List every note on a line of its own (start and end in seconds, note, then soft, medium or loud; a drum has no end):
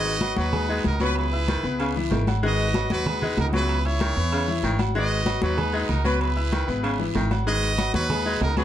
0.00 0.32 G#1 medium
0.00 0.16 D#3 medium
0.00 0.15 G#3 medium
0.00 0.16 D#4 medium
0.00 0.38 F#4 medium
0.00 0.38 B4 medium
0.00 0.16 D#5 medium
0.00 0.35 D#5 loud
0.05 high conga soft
0.05 low agogo medium
0.21 0.47 F#3 medium
0.21 0.48 F#4 medium
0.21 0.48 F#5 medium
0.21 high conga loud
0.21 low agogo loud
0.21 short guiro medium
0.36 0.81 D#2 medium
0.36 0.54 F#3 medium
0.36 0.97 D#4 medium
0.36 0.97 F#4 medium
0.36 0.83 B4 loud
0.36 high conga medium
0.36 short guiro medium
0.53 0.66 G#3 medium
0.53 0.66 G#4 medium
0.53 0.66 G#5 medium
0.53 high conga soft
0.53 low conga medium
0.53 low agogo medium
0.53 long guiro medium
0.68 0.86 G#3 medium
0.68 0.95 D#4 medium
0.68 0.95 D#5 medium
0.68 0.95 D#6 medium
0.68 high conga soft
0.84 1.58 C#2 loud
0.84 1.01 A#4 loud
0.84 high conga medium
0.84 low agogo medium
0.84 short guiro medium
1.00 1.26 F#3 medium
1.00 1.27 B3 medium
1.00 1.26 B4 medium
1.00 1.17 B4 medium
1.00 1.27 B5 medium
1.00 high conga medium
1.00 low agogo loud
1.00 short guiro medium
1.15 2.07 E4 medium
1.15 2.07 G#4 medium
1.15 2.08 B4 loud
1.15 low agogo loud
1.15 long guiro medium
1.32 1.58 E4 medium
1.32 1.58 E5 medium
1.32 1.59 E6 medium
1.32 high conga soft
1.48 1.65 D#3 medium
1.48 high conga medium
1.48 low agogo medium
1.48 short guiro medium
1.64 2.08 C#2 medium
1.64 1.90 B3 medium
1.64 1.90 B4 medium
1.64 1.90 B5 medium
1.64 high conga soft
1.64 short guiro medium
1.79 1.96 C#3 loud
1.79 high conga soft
1.79 low agogo medium
1.79 long guiro medium
1.96 2.22 E3 medium
1.96 2.22 E4 medium
1.96 2.22 E5 loud
1.96 high conga soft
2.11 2.84 G#1 loud
2.11 2.27 D#3 medium
2.11 high conga medium
2.11 low timbale medium
2.11 low agogo medium
2.11 short guiro medium
2.27 2.40 F#3 medium
2.27 2.40 F#4 medium
2.27 2.40 F#5 medium
2.27 high conga medium
2.27 low agogo loud
2.27 short guiro medium
2.43 2.69 D#3 medium
2.43 2.68 G#3 loud
2.43 2.69 D#4 medium
2.43 2.91 F#4 medium
2.43 2.92 B4 medium
2.43 2.69 D#5 medium
2.43 2.88 D#5 loud
2.43 high conga soft
2.43 low agogo medium
2.43 long guiro medium
2.59 high conga soft
2.59 low agogo medium
2.74 3.01 F#3 medium
2.74 3.01 F#4 medium
2.74 3.01 F#5 medium
2.74 high conga loud
2.74 low agogo loud
2.74 short guiro medium
2.90 3.34 D#2 loud
2.90 3.07 F#3 medium
2.90 3.50 D#4 medium
2.90 3.50 F#4 medium
2.90 3.36 B4 loud
2.90 high conga loud
2.90 short guiro medium
3.06 3.19 G#3 medium
3.06 3.19 G#4 medium
3.06 3.19 G#5 medium
3.06 high conga soft
3.06 low conga medium
3.06 low agogo loud
3.06 long guiro medium
3.22 3.38 G#3 medium
3.22 3.48 D#4 medium
3.22 3.48 D#5 medium
3.22 3.48 D#6 medium
3.22 high conga soft
3.22 low conga medium
3.37 4.10 C#2 loud
3.37 3.46 A#4 medium
3.37 high conga medium
3.37 low timbale medium
3.37 low agogo medium
3.37 short guiro medium
3.53 3.78 F#3 medium
3.53 3.79 B3 medium
3.53 3.84 E4 medium
3.53 3.84 G#4 medium
3.53 3.80 B4 medium
3.53 3.84 B4 loud
3.53 3.80 B5 medium
3.53 high conga medium
3.53 low agogo loud
3.53 short guiro medium
3.69 high conga soft
3.69 low agogo loud
3.69 long guiro medium
3.85 4.10 E4 medium
3.85 4.75 E4 medium
3.85 4.75 G#4 medium
3.85 4.80 C#5 loud
3.85 4.11 E5 medium
3.85 4.11 E6 medium
3.85 high conga soft
4.00 4.17 D#3 medium
4.00 high conga medium
4.00 low agogo medium
4.00 short guiro medium
4.16 4.60 E2 medium
4.16 4.42 B3 medium
4.16 4.42 B4 medium
4.16 4.43 B5 medium
4.16 high conga soft
4.16 short guiro medium
4.32 4.49 C#3 medium
4.32 high conga soft
4.32 low agogo loud
4.32 long guiro medium
4.47 4.74 E3 medium
4.47 4.74 E4 medium
4.47 4.74 E5 medium
4.47 high conga soft
4.63 5.36 G#1 medium
4.63 4.80 D#3 medium
4.63 high conga medium
4.63 low agogo medium
4.63 short guiro medium
4.79 4.92 F#3 medium
4.79 4.92 F#4 medium
4.79 4.92 F#5 medium
4.79 high conga medium
4.79 low agogo loud
4.79 short guiro medium
4.95 5.21 D#3 medium
4.95 5.20 G#3 medium
4.95 5.21 D#4 medium
4.95 5.41 F#4 medium
4.95 5.41 B4 medium
4.95 5.39 D#5 loud
4.95 5.21 D#5 medium
4.95 high conga soft
4.95 low agogo medium
4.95 long guiro medium
5.11 high conga soft
5.11 low agogo medium
5.26 5.52 F#3 medium
5.26 5.52 F#4 medium
5.26 5.52 F#5 medium
5.26 high conga medium
5.26 low agogo loud
5.26 short guiro medium
5.42 5.86 D#2 medium
5.42 5.59 F#3 medium
5.42 6.01 D#4 medium
5.42 6.01 F#4 medium
5.42 5.86 B4 medium
5.42 high conga loud
5.42 short guiro medium
5.57 5.70 G#3 medium
5.57 5.71 G#4 medium
5.57 5.71 G#5 medium
5.57 high conga soft
5.57 low conga medium
5.57 low agogo loud
5.57 long guiro medium
5.73 5.90 G#3 medium
5.73 5.99 D#4 medium
5.73 6.00 D#5 medium
5.73 6.00 D#6 medium
5.73 high conga soft
5.89 6.62 C#2 loud
5.89 6.05 A#4 medium
5.89 high conga medium
5.89 low agogo medium
5.89 short guiro medium
6.04 6.30 F#3 medium
6.04 6.31 B3 medium
6.04 6.19 B4 medium
6.04 6.31 B4 medium
6.04 6.31 B5 medium
6.04 high conga medium
6.04 low agogo medium
6.04 short guiro medium
6.20 7.11 E4 medium
6.20 7.11 G#4 medium
6.20 7.11 B4 medium
6.20 high conga soft
6.20 low agogo loud
6.20 long guiro medium
6.36 6.62 E4 medium
6.36 6.62 E5 medium
6.36 6.62 E6 medium
6.36 high conga soft
6.52 6.69 D#3 medium
6.52 high conga loud
6.52 low agogo medium
6.52 short guiro medium
6.68 7.12 G#1 medium
6.68 6.93 B3 medium
6.68 6.94 B4 medium
6.68 6.94 B5 medium
6.68 high conga soft
6.68 short guiro medium
6.83 7.00 C#3 medium
6.83 high conga soft
6.83 low agogo loud
6.83 long guiro medium
6.99 7.25 E3 loud
6.99 7.25 E4 loud
6.99 7.25 E5 medium
6.99 high conga soft
7.15 7.88 G#1 medium
7.15 7.31 D#3 medium
7.15 high conga medium
7.15 low timbale medium
7.15 low agogo medium
7.15 short guiro medium
7.31 7.44 F#3 medium
7.31 7.44 F#4 medium
7.31 7.44 F#5 medium
7.31 high conga medium
7.31 low agogo loud
7.31 short guiro medium
7.47 7.72 D#3 medium
7.47 7.72 G#3 loud
7.47 7.72 D#4 medium
7.47 7.94 F#4 medium
7.47 7.93 B4 medium
7.47 7.91 D#5 loud
7.47 7.73 D#5 medium
7.47 high conga soft
7.47 low agogo medium
7.47 long guiro medium
7.63 high conga soft
7.63 low agogo medium
7.78 8.04 F#3 medium
7.78 8.04 F#4 medium
7.78 8.04 F#5 medium
7.78 high conga loud
7.78 low agogo loud
7.78 short guiro medium
7.94 8.37 D#2 loud
7.94 8.11 F#3 medium
7.94 8.53 D#4 medium
7.94 8.53 F#4 medium
7.94 8.38 B4 loud
7.94 high conga loud
7.94 short guiro medium
8.10 8.22 G#3 medium
8.10 8.23 G#4 medium
8.10 8.22 G#5 medium
8.10 high conga soft
8.10 low conga medium
8.10 low agogo loud
8.10 long guiro medium
8.25 8.42 G#3 medium
8.25 8.51 D#4 medium
8.25 8.51 D#5 medium
8.25 8.51 D#6 medium
8.25 high conga soft
8.41 8.64 C#2 loud
8.41 8.56 A#4 loud
8.41 high conga medium
8.41 low timbale medium
8.41 low agogo medium
8.41 short guiro medium
8.57 8.64 F#3 medium
8.57 8.64 B3 medium
8.57 8.64 G#4 medium
8.57 8.64 B4 medium
8.57 8.64 B5 medium
8.57 high conga medium
8.57 low agogo medium
8.57 short guiro medium